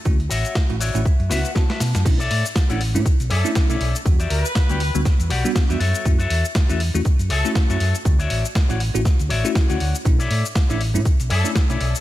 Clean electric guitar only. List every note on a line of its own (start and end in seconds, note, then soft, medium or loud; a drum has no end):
0.29 0.55 F#4 loud
0.29 0.55 C#5 loud
0.29 0.56 E5 loud
0.80 1.05 F#4 medium
0.80 1.06 C#5 medium
0.80 1.04 D5 medium
0.80 1.04 E5 loud
1.06 1.30 E5 medium
1.30 1.50 F#4 loud
1.30 1.50 B4 loud
1.30 1.51 E5 loud
1.39 1.54 F#5 medium
1.56 2.02 A5 medium
1.69 1.80 F#4 medium
1.69 1.81 B4 medium
1.69 1.81 E5 medium
1.94 muted clean electric guitar stroke soft
2.19 2.44 A4 loud
2.19 2.45 C#5 loud
2.19 2.45 D5 loud
2.19 2.45 E5 loud
2.69 2.80 A4 medium
2.69 2.80 C#5 medium
2.69 2.81 D5 medium
2.69 2.81 F#5 loud
2.94 muted clean electric guitar stroke soft
3.30 3.50 A4 loud
3.30 3.50 C#5 loud
3.30 3.50 D5 loud
3.30 3.51 E5 loud
3.69 3.94 A4 medium
3.69 3.95 C#5 medium
3.69 3.95 D5 medium
3.69 3.95 E5 loud
4.19 4.44 F#4 loud
4.19 4.45 G4 loud
4.19 4.45 D5 loud
4.19 4.45 E5 loud
4.69 4.80 F#4 medium
4.69 4.80 G4 medium
4.69 4.81 D5 medium
4.69 4.81 G5 loud
4.94 muted clean electric guitar stroke soft
5.29 5.50 F#4 loud
5.29 5.50 G4 loud
5.29 5.50 D5 loud
5.29 5.51 F#5 loud
5.69 5.78 F#4 medium
5.69 5.80 G4 medium
5.69 5.80 D5 medium
5.69 5.80 E5 loud
5.79 6.11 F#4 medium
5.79 6.11 A4 medium
5.79 6.11 C#5 medium
5.79 6.12 E5 loud
6.19 6.44 F#4 loud
6.19 6.45 A4 loud
6.19 6.45 C#5 loud
6.19 6.45 E5 loud
6.69 6.80 F#4 medium
6.69 6.80 A4 medium
6.69 6.81 C#5 medium
6.69 6.81 E5 loud
6.94 muted clean electric guitar stroke soft
7.29 7.50 F#4 loud
7.29 7.50 A4 loud
7.29 7.50 C#5 loud
7.29 7.50 E5 loud
7.69 7.94 F#4 medium
7.69 7.94 A4 medium
7.69 7.95 C#5 medium
7.69 7.95 E5 loud
8.18 8.44 F#4 loud
8.18 8.44 C#5 loud
8.18 8.45 D5 loud
8.18 8.45 E5 loud
8.69 8.80 F#4 medium
8.69 8.80 C#5 medium
8.69 8.81 D5 medium
8.69 8.81 F#5 medium
8.94 muted clean electric guitar stroke soft
9.29 9.50 F#4 loud
9.29 9.50 C#5 loud
9.29 9.50 D5 loud
9.29 9.50 E5 loud
9.69 9.94 F#4 medium
9.69 9.94 C#5 medium
9.69 9.95 D5 medium
9.69 9.95 F#5 medium
10.19 10.44 A4 loud
10.19 10.44 C#5 loud
10.19 10.45 D5 loud
10.19 10.45 E5 loud
10.69 10.80 A4 medium
10.69 10.80 C#5 medium
10.69 10.81 D5 medium
10.69 10.81 E5 loud
10.94 muted clean electric guitar stroke soft
11.30 11.50 A4 loud
11.30 11.50 C#5 loud
11.30 11.50 D5 loud
11.30 11.51 E5 loud
11.69 11.94 A4 medium
11.69 11.95 C#5 medium
11.69 11.95 D5 medium
11.69 11.95 E5 medium